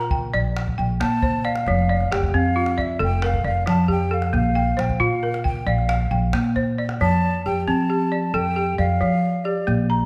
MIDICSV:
0, 0, Header, 1, 5, 480
1, 0, Start_track
1, 0, Key_signature, -1, "major"
1, 0, Tempo, 444444
1, 1800, Time_signature, 12, 3, 24, 8
1, 10859, End_track
2, 0, Start_track
2, 0, Title_t, "Flute"
2, 0, Program_c, 0, 73
2, 0, Note_on_c, 0, 82, 92
2, 173, Note_off_c, 0, 82, 0
2, 1089, Note_on_c, 0, 81, 100
2, 1562, Note_on_c, 0, 77, 90
2, 1579, Note_off_c, 0, 81, 0
2, 2286, Note_on_c, 0, 79, 89
2, 2302, Note_off_c, 0, 77, 0
2, 2448, Note_off_c, 0, 79, 0
2, 2448, Note_on_c, 0, 79, 61
2, 2542, Note_on_c, 0, 77, 96
2, 2558, Note_off_c, 0, 79, 0
2, 3031, Note_on_c, 0, 76, 82
2, 3047, Note_off_c, 0, 77, 0
2, 3257, Note_off_c, 0, 76, 0
2, 3273, Note_on_c, 0, 79, 99
2, 3521, Note_on_c, 0, 77, 88
2, 3537, Note_off_c, 0, 79, 0
2, 3736, Note_off_c, 0, 77, 0
2, 3743, Note_on_c, 0, 77, 86
2, 3957, Note_off_c, 0, 77, 0
2, 3976, Note_on_c, 0, 81, 91
2, 4193, Note_off_c, 0, 81, 0
2, 4229, Note_on_c, 0, 79, 90
2, 4468, Note_on_c, 0, 77, 80
2, 4485, Note_off_c, 0, 79, 0
2, 4696, Note_off_c, 0, 77, 0
2, 4712, Note_on_c, 0, 77, 96
2, 5186, Note_on_c, 0, 79, 82
2, 5202, Note_off_c, 0, 77, 0
2, 5416, Note_on_c, 0, 77, 86
2, 5432, Note_off_c, 0, 79, 0
2, 5890, Note_off_c, 0, 77, 0
2, 5906, Note_on_c, 0, 79, 85
2, 6135, Note_on_c, 0, 77, 81
2, 6151, Note_off_c, 0, 79, 0
2, 6849, Note_off_c, 0, 77, 0
2, 7573, Note_on_c, 0, 81, 118
2, 8015, Note_off_c, 0, 81, 0
2, 8059, Note_on_c, 0, 79, 93
2, 8274, Note_off_c, 0, 79, 0
2, 8294, Note_on_c, 0, 81, 99
2, 9012, Note_on_c, 0, 79, 104
2, 9029, Note_off_c, 0, 81, 0
2, 9486, Note_off_c, 0, 79, 0
2, 9493, Note_on_c, 0, 77, 102
2, 10200, Note_on_c, 0, 74, 79
2, 10216, Note_off_c, 0, 77, 0
2, 10679, Note_off_c, 0, 74, 0
2, 10859, End_track
3, 0, Start_track
3, 0, Title_t, "Balafon"
3, 0, Program_c, 1, 12
3, 0, Note_on_c, 1, 65, 75
3, 0, Note_on_c, 1, 70, 61
3, 0, Note_on_c, 1, 72, 66
3, 119, Note_on_c, 1, 79, 65
3, 122, Note_off_c, 1, 65, 0
3, 125, Note_off_c, 1, 72, 0
3, 362, Note_on_c, 1, 74, 82
3, 603, Note_off_c, 1, 70, 0
3, 829, Note_off_c, 1, 79, 0
3, 841, Note_off_c, 1, 74, 0
3, 842, Note_on_c, 1, 79, 61
3, 1085, Note_on_c, 1, 58, 83
3, 1322, Note_on_c, 1, 72, 62
3, 1562, Note_off_c, 1, 79, 0
3, 1563, Note_off_c, 1, 58, 0
3, 1563, Note_on_c, 1, 74, 62
3, 1811, Note_on_c, 1, 53, 75
3, 2033, Note_off_c, 1, 74, 0
3, 2042, Note_off_c, 1, 72, 0
3, 2046, Note_on_c, 1, 74, 65
3, 2285, Note_on_c, 1, 67, 69
3, 2287, Note_off_c, 1, 53, 0
3, 2528, Note_on_c, 1, 60, 84
3, 2763, Note_on_c, 1, 65, 65
3, 2764, Note_off_c, 1, 74, 0
3, 2999, Note_on_c, 1, 74, 65
3, 3004, Note_off_c, 1, 67, 0
3, 3005, Note_off_c, 1, 60, 0
3, 3234, Note_on_c, 1, 69, 83
3, 3481, Note_on_c, 1, 70, 63
3, 3483, Note_off_c, 1, 65, 0
3, 3708, Note_off_c, 1, 74, 0
3, 3718, Note_off_c, 1, 69, 0
3, 3721, Note_on_c, 1, 74, 60
3, 3953, Note_on_c, 1, 53, 78
3, 4193, Note_on_c, 1, 67, 61
3, 4202, Note_off_c, 1, 70, 0
3, 4438, Note_off_c, 1, 53, 0
3, 4439, Note_on_c, 1, 69, 62
3, 4442, Note_off_c, 1, 74, 0
3, 4676, Note_on_c, 1, 58, 75
3, 4918, Note_off_c, 1, 67, 0
3, 4918, Note_on_c, 1, 79, 65
3, 4921, Note_off_c, 1, 69, 0
3, 5150, Note_on_c, 1, 72, 64
3, 5160, Note_off_c, 1, 58, 0
3, 5398, Note_on_c, 1, 65, 82
3, 5641, Note_off_c, 1, 79, 0
3, 5647, Note_on_c, 1, 70, 62
3, 5877, Note_off_c, 1, 72, 0
3, 5878, Note_on_c, 1, 79, 62
3, 5881, Note_off_c, 1, 65, 0
3, 6119, Note_on_c, 1, 74, 73
3, 6360, Note_on_c, 1, 77, 60
3, 6365, Note_off_c, 1, 70, 0
3, 6586, Note_off_c, 1, 79, 0
3, 6599, Note_on_c, 1, 79, 58
3, 6601, Note_off_c, 1, 74, 0
3, 6843, Note_on_c, 1, 58, 77
3, 7081, Note_off_c, 1, 77, 0
3, 7083, Note_on_c, 1, 72, 62
3, 7321, Note_off_c, 1, 79, 0
3, 7323, Note_off_c, 1, 58, 0
3, 7327, Note_on_c, 1, 74, 58
3, 7571, Note_on_c, 1, 53, 84
3, 7803, Note_off_c, 1, 72, 0
3, 7805, Note_off_c, 1, 74, 0
3, 8047, Note_off_c, 1, 53, 0
3, 8055, Note_on_c, 1, 67, 67
3, 8289, Note_on_c, 1, 60, 85
3, 8515, Note_off_c, 1, 67, 0
3, 8528, Note_on_c, 1, 67, 64
3, 8765, Note_off_c, 1, 60, 0
3, 8767, Note_on_c, 1, 74, 62
3, 9007, Note_on_c, 1, 69, 81
3, 9233, Note_off_c, 1, 67, 0
3, 9246, Note_on_c, 1, 67, 62
3, 9474, Note_off_c, 1, 74, 0
3, 9483, Note_off_c, 1, 69, 0
3, 9487, Note_on_c, 1, 74, 64
3, 9728, Note_on_c, 1, 53, 81
3, 9963, Note_off_c, 1, 67, 0
3, 10203, Note_off_c, 1, 53, 0
3, 10203, Note_off_c, 1, 74, 0
3, 10207, Note_on_c, 1, 67, 62
3, 10444, Note_on_c, 1, 58, 81
3, 10683, Note_off_c, 1, 67, 0
3, 10689, Note_on_c, 1, 82, 70
3, 10859, Note_off_c, 1, 58, 0
3, 10859, Note_off_c, 1, 82, 0
3, 10859, End_track
4, 0, Start_track
4, 0, Title_t, "Upright bass"
4, 0, Program_c, 2, 32
4, 0, Note_on_c, 2, 46, 86
4, 323, Note_off_c, 2, 46, 0
4, 366, Note_on_c, 2, 34, 87
4, 811, Note_off_c, 2, 34, 0
4, 852, Note_on_c, 2, 34, 88
4, 1070, Note_off_c, 2, 34, 0
4, 1097, Note_on_c, 2, 46, 81
4, 1766, Note_off_c, 2, 46, 0
4, 1810, Note_on_c, 2, 29, 93
4, 2254, Note_off_c, 2, 29, 0
4, 2289, Note_on_c, 2, 29, 80
4, 2509, Note_off_c, 2, 29, 0
4, 2527, Note_on_c, 2, 41, 86
4, 3202, Note_off_c, 2, 41, 0
4, 3239, Note_on_c, 2, 29, 92
4, 3688, Note_off_c, 2, 29, 0
4, 3717, Note_on_c, 2, 29, 89
4, 3943, Note_off_c, 2, 29, 0
4, 3969, Note_on_c, 2, 41, 86
4, 4643, Note_off_c, 2, 41, 0
4, 4681, Note_on_c, 2, 34, 92
4, 5129, Note_off_c, 2, 34, 0
4, 5167, Note_on_c, 2, 34, 82
4, 5389, Note_off_c, 2, 34, 0
4, 5397, Note_on_c, 2, 46, 80
4, 6077, Note_off_c, 2, 46, 0
4, 6117, Note_on_c, 2, 34, 89
4, 6567, Note_off_c, 2, 34, 0
4, 6599, Note_on_c, 2, 34, 88
4, 6824, Note_off_c, 2, 34, 0
4, 6834, Note_on_c, 2, 46, 82
4, 7515, Note_off_c, 2, 46, 0
4, 7569, Note_on_c, 2, 41, 91
4, 8013, Note_off_c, 2, 41, 0
4, 8053, Note_on_c, 2, 41, 83
4, 8272, Note_off_c, 2, 41, 0
4, 8287, Note_on_c, 2, 53, 92
4, 8961, Note_off_c, 2, 53, 0
4, 9005, Note_on_c, 2, 41, 91
4, 9450, Note_off_c, 2, 41, 0
4, 9488, Note_on_c, 2, 41, 90
4, 9708, Note_off_c, 2, 41, 0
4, 10448, Note_on_c, 2, 34, 96
4, 10859, Note_off_c, 2, 34, 0
4, 10859, End_track
5, 0, Start_track
5, 0, Title_t, "Calabash"
5, 115, Note_on_c, 9, 36, 62
5, 223, Note_off_c, 9, 36, 0
5, 371, Note_on_c, 9, 38, 20
5, 479, Note_off_c, 9, 38, 0
5, 611, Note_on_c, 9, 38, 66
5, 719, Note_off_c, 9, 38, 0
5, 733, Note_on_c, 9, 36, 49
5, 841, Note_off_c, 9, 36, 0
5, 1089, Note_on_c, 9, 38, 69
5, 1197, Note_off_c, 9, 38, 0
5, 1322, Note_on_c, 9, 36, 64
5, 1430, Note_off_c, 9, 36, 0
5, 1557, Note_on_c, 9, 38, 20
5, 1665, Note_off_c, 9, 38, 0
5, 1680, Note_on_c, 9, 38, 58
5, 1788, Note_off_c, 9, 38, 0
5, 1798, Note_on_c, 9, 36, 67
5, 1798, Note_on_c, 9, 38, 21
5, 1906, Note_off_c, 9, 36, 0
5, 1906, Note_off_c, 9, 38, 0
5, 1931, Note_on_c, 9, 38, 22
5, 2039, Note_off_c, 9, 38, 0
5, 2165, Note_on_c, 9, 38, 21
5, 2273, Note_off_c, 9, 38, 0
5, 2294, Note_on_c, 9, 38, 66
5, 2402, Note_off_c, 9, 38, 0
5, 2405, Note_on_c, 9, 36, 57
5, 2513, Note_off_c, 9, 36, 0
5, 2876, Note_on_c, 9, 38, 49
5, 2984, Note_off_c, 9, 38, 0
5, 3007, Note_on_c, 9, 36, 62
5, 3115, Note_off_c, 9, 36, 0
5, 3241, Note_on_c, 9, 38, 20
5, 3349, Note_off_c, 9, 38, 0
5, 3481, Note_on_c, 9, 38, 64
5, 3589, Note_off_c, 9, 38, 0
5, 3601, Note_on_c, 9, 36, 44
5, 3709, Note_off_c, 9, 36, 0
5, 3968, Note_on_c, 9, 38, 61
5, 4076, Note_off_c, 9, 38, 0
5, 4198, Note_on_c, 9, 36, 56
5, 4306, Note_off_c, 9, 36, 0
5, 4436, Note_on_c, 9, 38, 17
5, 4544, Note_off_c, 9, 38, 0
5, 4558, Note_on_c, 9, 38, 43
5, 4666, Note_off_c, 9, 38, 0
5, 4684, Note_on_c, 9, 36, 55
5, 4684, Note_on_c, 9, 38, 18
5, 4792, Note_off_c, 9, 36, 0
5, 4792, Note_off_c, 9, 38, 0
5, 4928, Note_on_c, 9, 38, 17
5, 5036, Note_off_c, 9, 38, 0
5, 5173, Note_on_c, 9, 38, 56
5, 5281, Note_off_c, 9, 38, 0
5, 5286, Note_on_c, 9, 36, 46
5, 5286, Note_on_c, 9, 38, 18
5, 5394, Note_off_c, 9, 36, 0
5, 5394, Note_off_c, 9, 38, 0
5, 5654, Note_on_c, 9, 38, 18
5, 5762, Note_off_c, 9, 38, 0
5, 5770, Note_on_c, 9, 38, 44
5, 5878, Note_off_c, 9, 38, 0
5, 5890, Note_on_c, 9, 36, 58
5, 5998, Note_off_c, 9, 36, 0
5, 6000, Note_on_c, 9, 38, 18
5, 6108, Note_off_c, 9, 38, 0
5, 6247, Note_on_c, 9, 38, 18
5, 6355, Note_off_c, 9, 38, 0
5, 6362, Note_on_c, 9, 38, 61
5, 6470, Note_off_c, 9, 38, 0
5, 6475, Note_on_c, 9, 36, 42
5, 6583, Note_off_c, 9, 36, 0
5, 6839, Note_on_c, 9, 38, 65
5, 6947, Note_off_c, 9, 38, 0
5, 6958, Note_on_c, 9, 38, 19
5, 7066, Note_off_c, 9, 38, 0
5, 7085, Note_on_c, 9, 36, 59
5, 7085, Note_on_c, 9, 38, 18
5, 7193, Note_off_c, 9, 36, 0
5, 7193, Note_off_c, 9, 38, 0
5, 7442, Note_on_c, 9, 38, 48
5, 7550, Note_off_c, 9, 38, 0
5, 10859, End_track
0, 0, End_of_file